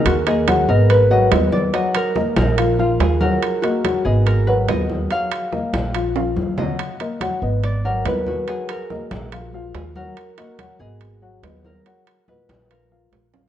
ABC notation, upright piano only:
X:1
M:4/4
L:1/8
Q:1/4=142
K:Ebm
V:1 name="Upright piano"
z [B,Be] [G,Gg] [Cce]2 [G,Gg] [Cce]2 | [G,Gg]2 [B,Be]2 [F,Ff] [F,Ff]2 [G,Gg]- | [G,Gg] [B,Be] [G,Gg] [Cce]2 [G,Gg] [Cce]2 | [G,Gf]2 [B,Be]2 [F,Ff] [F,Ff]2 [G,Gg]- |
[G,Gg] [B,Be] [G,Gg] [Cce]2 [G,Gg] [Cce]2 | [G,Gg]2 [B,Be]2 [F,Ff] [F,Ff]2 [G,Gg]- | [G,Gg] [B,Be] [G,Gg] [Cce]2 [G,Gg] [Cce]2 | [G,Gg]2 [B,,Ge]2 [F,Ff] [F,Ff]2 [F,Ff] |]